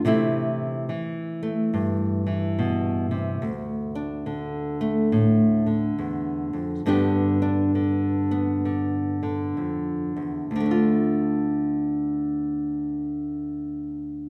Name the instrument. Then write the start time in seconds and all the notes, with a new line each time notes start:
nylon-string guitar
0.05 C3 E3 A3 C4 E4
0.89 E3
1.43 A3
1.73 G2
2.26 E3
2.59 B2
3.11 C3
3.42 D2
3.95 D4
4.26 D3
4.81 A3
5.12 A2
5.66 D3
5.98 E2
6.53 F2
6.86 G2 D3 B3 D4 G4
7.42 D4
7.75 D3
8.31 B3
8.65 D3
9.23 D3
9.57 F2
10.16 E2
10.51 D2
10.56 D3
10.60 A3
10.66 D4
10.71 F4